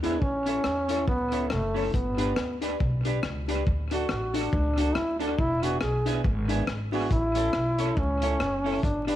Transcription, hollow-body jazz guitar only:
0.03 0.17 B3 medium
0.03 0.17 D4 loud
0.03 0.18 G#4 loud
0.46 0.60 C#4 medium
0.46 0.60 E4 medium
0.46 0.61 A4 loud
0.88 1.03 C#4 medium
0.88 1.03 E4 medium
0.88 1.04 A4 medium
1.32 1.46 C#4 medium
1.32 1.46 E4 medium
1.32 1.47 A4 medium
1.74 1.89 C#4 medium
1.74 1.89 E4 medium
1.74 1.90 A4 medium
2.18 2.32 D4 medium
2.18 2.33 G4 medium
2.18 2.33 B4 loud
2.62 2.75 D4 medium
2.62 2.76 G4 medium
2.62 2.76 B4 medium
3.05 3.19 D4 medium
3.05 3.19 G4 medium
3.05 3.20 B4 medium
3.24 muted hollow-body jazz guitar stroke soft
3.49 3.62 D4 medium
3.49 3.62 G4 medium
3.49 3.63 B4 medium
3.92 4.05 D4 medium
3.92 4.05 F#4 medium
3.92 4.06 A4 medium
4.34 4.48 D4 loud
4.34 4.48 F#4 medium
4.34 4.49 A4 loud
4.77 4.91 D4 medium
4.77 4.91 F#4 medium
4.77 4.92 A4 medium
5.19 5.33 D4 medium
5.19 5.34 F#4 medium
5.19 5.34 A4 loud
5.62 5.76 B3 medium
5.62 5.77 D4 medium
5.62 5.77 G#4 medium
6.06 6.20 B3 medium
6.06 6.20 D4 medium
6.06 6.21 G#4 loud
6.49 6.63 B3 medium
6.49 6.63 D4 medium
6.49 6.64 G#4 medium
6.92 7.06 B3 medium
6.92 7.06 D4 medium
6.92 7.07 G#4 loud
7.35 7.49 C#4 medium
7.35 7.49 E4 medium
7.35 7.50 A4 loud
7.78 7.92 C#4 medium
7.78 7.93 E4 medium
7.78 7.93 A4 loud
8.22 8.35 C#4 medium
8.22 8.36 E4 medium
8.22 8.36 A4 loud
8.64 8.78 C#4 medium
8.64 8.79 E4 medium
8.64 8.79 A4 medium
9.07 9.16 D4 medium
9.07 9.16 G4 medium
9.07 9.16 B4 medium

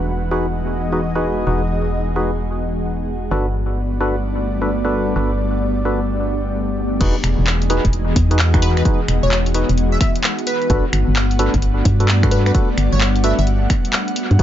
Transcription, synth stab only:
0.31 0.46 D#4 medium
0.31 0.46 F#4 medium
0.31 0.46 G#4 medium
0.31 0.46 B4 loud
0.92 1.01 D#4 medium
0.92 1.01 F#4 medium
0.92 1.01 G#4 medium
0.92 1.01 B4 medium
1.16 1.45 D#4 medium
1.16 1.45 F#4 medium
1.16 1.45 G#4 medium
1.16 1.45 B4 medium
1.47 1.62 D#4 medium
1.47 1.62 F#4 medium
1.47 1.62 G#4 medium
1.47 1.62 B4 medium
2.16 2.31 D#4 medium
2.16 2.31 F#4 medium
2.16 2.31 G#4 medium
2.16 2.31 B4 medium
3.31 3.46 D4 medium
3.31 3.46 F#4 medium
3.31 3.46 A4 medium
3.31 3.46 B4 medium
4.01 4.16 D4 loud
4.01 4.16 F#4 medium
4.01 4.16 A4 medium
4.01 4.16 B4 loud
4.62 4.70 D4 medium
4.62 4.70 F#4 medium
4.62 4.70 A4 medium
4.62 4.70 B4 medium
4.85 5.14 D4 medium
4.85 5.14 F#4 medium
4.85 5.14 A4 medium
4.85 5.14 B4 loud
5.16 5.31 D4 medium
5.16 5.31 F#4 medium
5.16 5.31 A4 medium
5.16 5.31 B4 medium
5.85 6.00 D4 medium
5.85 6.00 F#4 medium
5.85 6.00 A4 medium
5.85 6.00 B4 medium
7.01 7.16 D#4 medium
7.01 7.16 F#4 medium
7.01 7.16 G#4 medium
7.01 7.16 B4 loud
7.70 7.85 D#4 loud
7.70 7.85 F#4 medium
7.70 7.85 G#4 medium
7.70 7.85 B4 loud
8.31 8.39 D#4 medium
8.31 8.39 F#4 medium
8.31 8.39 G#4 medium
8.31 8.39 B4 medium
8.54 8.83 D#4 medium
8.54 8.83 F#4 medium
8.54 8.83 G#4 medium
8.54 8.83 B4 loud
8.85 9.00 D#4 medium
8.85 9.00 F#4 medium
8.85 9.00 G#4 medium
8.85 9.00 B4 medium
9.54 9.69 D#4 medium
9.54 9.69 F#4 medium
9.54 9.69 G#4 medium
9.54 9.69 B4 medium
10.70 10.85 D4 medium
10.70 10.85 F#4 medium
10.70 10.85 A4 medium
10.70 10.85 B4 loud
11.39 11.54 D4 loud
11.39 11.54 F#4 loud
11.39 11.54 A4 medium
11.39 11.54 B4 loud
12.00 12.08 D4 medium
12.00 12.08 F#4 medium
12.00 12.08 A4 medium
12.00 12.08 B4 medium
12.23 12.53 D4 medium
12.23 12.53 F#4 medium
12.23 12.53 A4 medium
12.23 12.53 B4 loud
12.54 12.69 D4 medium
12.54 12.69 F#4 medium
12.54 12.69 A4 medium
12.54 12.69 B4 medium
13.24 13.39 D4 medium
13.24 13.39 F#4 medium
13.24 13.39 A4 medium
13.24 13.39 B4 medium
14.39 14.43 D#4 medium
14.39 14.43 F#4 medium
14.39 14.43 G#4 medium
14.39 14.43 B4 loud

